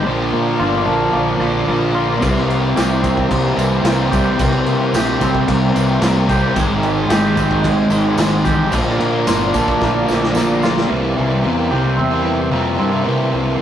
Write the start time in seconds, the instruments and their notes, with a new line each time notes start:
0.03 fingered electric bass A#1, distorted electric guitar A#2 F3, overdriven electric guitar A#2 D3 F3, clean electric guitar F3, analog synth pad A#4 D5 F5 D6
0.07 overdriven electric guitar A#3 D4, distorted electric guitar A#3
0.33 fingered electric bass A#2, clean electric guitar A#3
0.59 fingered electric bass G1, distorted electric guitar A#2 F3 A#3, clean electric guitar F4
0.85 fingered electric bass A#1, distorted electric guitar F3 A#3, clean electric guitar D4
1.13 fingered electric bass A#1, clean electric guitar A#3
1.39 fingered electric bass A#1, clean electric guitar F3, overdriven electric guitar F3 A#3
1.44 overdriven electric guitar A#2
1.67 fingered electric bass A#1, distorted electric guitar A#2 F3, clean electric guitar A#3
1.71 distorted electric guitar A#3
1.92 distorted electric guitar A#3, clean electric guitar F4
1.96 distorted electric guitar F3
2.19 distorted electric guitar C3 G3 C4, overdriven electric guitar C3, clean electric guitar E3, analog synth pad E5 G5 C6, kick, tambourine, crash
2.23 fingered electric bass C2, overdriven electric guitar G3 A#3 E4
2.37 snare
2.48 clean electric guitar A#3, tambourine, crash
2.74 fingered electric bass C2, distorted electric guitar C3 G3 C4, clean electric guitar G4, snare, tambourine, crash
3.02 distorted electric guitar G3 C4, clean electric guitar C4, kick, tambourine, crash
3.17 kick
3.29 fingered electric bass C2, clean electric guitar A#3, kick, tambourine, crash
3.56 fingered electric bass C2, overdriven electric guitar C3 G3 C4, clean electric guitar E3, tambourine, crash
3.83 fingered electric bass C2, distorted electric guitar C3 G3 C4, clean electric guitar A#3, snare, tambourine, crash
4.09 fingered electric bass C2, distorted electric guitar G3 C4, clean electric guitar G4, kick, tambourine, crash
4.36 fingered electric bass C2, distorted electric guitar C3 G3 C4, clean electric guitar E3, kick, tambourine, crash
4.66 fingered electric bass C3, clean electric guitar A#3, tambourine, crash
4.92 fingered electric bass A#1, distorted electric guitar C3 G3 C4, clean electric guitar G4, snare, tambourine, crash
5.19 fingered electric bass C2, distorted electric guitar G3 C4, clean electric guitar C4, kick, tambourine, crash
5.35 kick
5.48 fingered electric bass C2, clean electric guitar A#3, kick, tambourine, crash
5.75 fingered electric bass C2, overdriven electric guitar C3 G3 C4, clean electric guitar E3, tambourine, crash
6.00 fingered electric bass C2, distorted electric guitar C3 G3 C4, clean electric guitar A#3, snare, tambourine, crash
6.28 distorted electric guitar C4, clean electric guitar G4, kick, tambourine, crash
6.32 distorted electric guitar G3
6.55 fingered electric bass G#1, distorted electric guitar G#2 D#3 G#3, overdriven electric guitar G#2 D#3 G#3 C4, clean electric guitar D#3, analog synth pad D#5 C6, kick, tambourine, crash
6.59 overdriven electric guitar D#4
6.83 clean electric guitar G#3, tambourine, crash
7.09 fingered electric bass G#1, distorted electric guitar G#2 D#3 G#3, clean electric guitar G4, snare, tambourine, crash
7.37 distorted electric guitar D#3 G#3, clean electric guitar C4, kick, tambourine, crash
7.51 kick
7.64 fingered electric bass G#1, clean electric guitar G#3, kick, tambourine, crash
7.90 fingered electric bass G#1, overdriven electric guitar G#2 D#3 G#3, clean electric guitar D#3, tambourine, crash
8.17 fingered electric bass G#1, distorted electric guitar G#2 D#3 G#3, clean electric guitar G#3, snare, tambourine, crash
8.44 fingered electric bass A1, distorted electric guitar D#3 G#3, clean electric guitar G4, kick, tambourine, crash
8.71 fingered electric bass A#1, distorted electric guitar A#2 F3 A#3, overdriven electric guitar A#2 D3 F3 A#3 D4, clean electric guitar F3, analog synth pad A#4 D5 F5 D6, kick, tambourine, crash
8.87 snare
8.99 fingered electric bass A#2, clean electric guitar A#3, crash
9.25 fingered electric bass G1, distorted electric guitar A#2 F3 A#3, clean electric guitar F4, snare, tambourine, crash
9.53 fingered electric bass A#1, distorted electric guitar F3 A#3, clean electric guitar D4, kick, tambourine, crash
9.68 kick
9.81 fingered electric bass A#1, clean electric guitar A#3, kick, snare, tambourine
10.06 fingered electric bass A#1, overdriven electric guitar A#2 F3 A#3, clean electric guitar F3, snare, tambourine
10.23 snare
10.34 fingered electric bass A#1, distorted electric guitar A#2 F3 A#3, clean electric guitar A#3, snare, tambourine
10.62 distorted electric guitar F3 A#3, clean electric guitar F4, snare, tambourine
10.78 snare
10.88 fingered electric bass C2, overdriven electric guitar C3 G3 A#3 E4, distorted electric guitar C3 G3 C4, clean electric guitar E3, analog synth pad A#4 E5 G5 C6
11.15 fingered electric bass C2, distorted electric guitar C3 G3 C4, clean electric guitar E3
11.29 distorted electric guitar G3 C4
11.42 fingered electric bass E2, distorted electric guitar C3 G3 C4, overdriven electric guitar C3 G3 A#3 E4, clean electric guitar A#3
11.55 overdriven electric guitar G3 A#3 E4
11.69 fingered electric bass C2, overdriven electric guitar C3 G3 A#3 E4, distorted electric guitar C3 G3, clean electric guitar G4
11.74 distorted electric guitar C4
11.83 distorted electric guitar G3 C4, muted overdriven electric guitar stroke
11.97 fingered electric bass E2, distorted electric guitar C3 G3, clean electric guitar C4
12.01 distorted electric guitar C4
12.10 distorted electric guitar G3 C4, overdriven electric guitar G3 A#3 E4
12.24 overdriven electric guitar C3 G3 A#3 E4, clean electric guitar E3
12.38 distorted electric guitar G3 C4, muted overdriven electric guitar stroke
12.50 fingered electric bass F2, distorted electric guitar C3 G3 C4, overdriven electric guitar C3 G3 A#3, clean electric guitar A#3
12.54 overdriven electric guitar E4
12.77 fingered electric bass G2, overdriven electric guitar C3 G3 A#3 E4, distorted electric guitar C3 G3 C4, clean electric guitar C4
12.91 distorted electric guitar G3 C4, overdriven electric guitar G3 A#3 E4
13.04 distorted electric guitar C3 G3 C4, overdriven electric guitar C3 G3 A#3, fingered electric bass C3, clean electric guitar E3, analog synth pad A5
13.09 overdriven electric guitar E4
13.32 fingered electric bass C2, distorted electric guitar C3 G3 C4, clean electric guitar E3
13.46 distorted electric guitar G3 C4